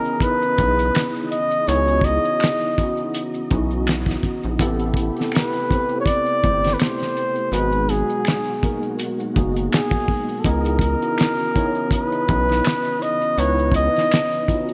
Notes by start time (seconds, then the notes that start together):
Already playing: C#3 E3 B3 C#4 D#4 E4 G#4 A#4 C#5 D#5
0.05 maracas
0.20 B4, kick, closed hi-hat, maracas
0.42 maracas
0.58 B1 B3 C#4 D#4 E4 G#4, kick, closed hi-hat
0.79 closed hi-hat, maracas
0.95 finger snap, snare, closed hi-hat, maracas
1.15 maracas
1.32 D#5, closed hi-hat
1.51 maracas
1.67 C#2 B3 C#4 D#4 E4 F#4 C#5, closed hi-hat, maracas
1.76 G#4
1.88 maracas
2.01 D#5, kick, closed hi-hat
2.25 maracas
2.40 finger snap, snare, closed hi-hat, maracas
2.61 maracas
2.78 B3 C#4 D#4 E4 F#4, kick, closed hi-hat
2.97 maracas
3.14 closed hi-hat, maracas
3.34 maracas
3.50 B1 B3 C#4 D#4 E4 F#4, kick, closed hi-hat
3.71 maracas
3.87 finger snap, snare, closed hi-hat, maracas
4.06 kick, snare, maracas
4.23 A#1, kick, closed hi-hat
4.43 A#1, maracas
4.59 A1 C3 A3 B3 C4 E4 G4 A4, kick, closed hi-hat, maracas
4.80 maracas
4.94 kick, closed hi-hat
5.16 B3 C4 E4 G4 A4, maracas
5.21 snare
5.32 B4, finger snap, closed hi-hat, maracas
5.36 snare
5.53 maracas
5.70 C4 E4 G4 B4 C5, kick, closed hi-hat
5.89 maracas
6.00 C#5
6.06 D5, kick, closed hi-hat, maracas
6.26 maracas
6.43 G1 A3 C4 E4 G4 C5, kick, closed hi-hat
6.63 snare, closed hi-hat, maracas
6.74 B4
6.79 C5, finger snap, snare, closed hi-hat, maracas
6.99 snare, maracas
7.17 closed hi-hat
7.36 maracas
7.52 G#1 B2 F#3 G#3 B3 D#4 F#4 G#4 B4, closed hi-hat, maracas
7.72 maracas
7.89 G#4, closed hi-hat
8.09 maracas
8.25 finger snap, snare, closed hi-hat, maracas
8.46 maracas
8.62 A#3 B3 D#4 F#4 A#4, kick, closed hi-hat
8.82 maracas
8.99 closed hi-hat, maracas
9.20 maracas
9.35 F#1 A#3 B3 D#4 F#4 G#4, kick, closed hi-hat
9.56 closed hi-hat, maracas
9.73 G#4, finger snap, snare, closed hi-hat, maracas
9.91 kick, maracas
10.08 kick, open hi-hat
10.29 maracas
10.40 C#3 A4
10.44 C#2 E3 B3 C#4 D#4 E4 G#4 A#4 D#5, kick, closed hi-hat, maracas
10.65 closed hi-hat, maracas
10.79 kick, closed hi-hat
11.01 B3 C#4 D#4 E4 F#4, maracas
11.18 finger snap, snare, closed hi-hat, maracas
11.38 maracas
11.54 B3 C#4 D#4 E4 C#5, kick, closed hi-hat
11.75 maracas
11.91 B4, kick, closed hi-hat, maracas
12.12 maracas
12.28 B1 B3 C#4 D#4 E4 B4, kick, closed hi-hat
12.49 snare, maracas
12.65 finger snap, snare, closed hi-hat, maracas
12.85 maracas
13.02 D#5, closed hi-hat
13.22 maracas
13.36 C#2 B3 C#4 D#4 E4 B4 C#5, closed hi-hat, maracas
13.59 maracas
13.72 kick, closed hi-hat
13.76 D#5
13.96 snare, maracas
14.12 finger snap, snare, closed hi-hat, maracas
14.32 maracas
14.48 B3 C#4 D#4 E4 F4, kick, closed hi-hat
14.56 F#4
14.68 maracas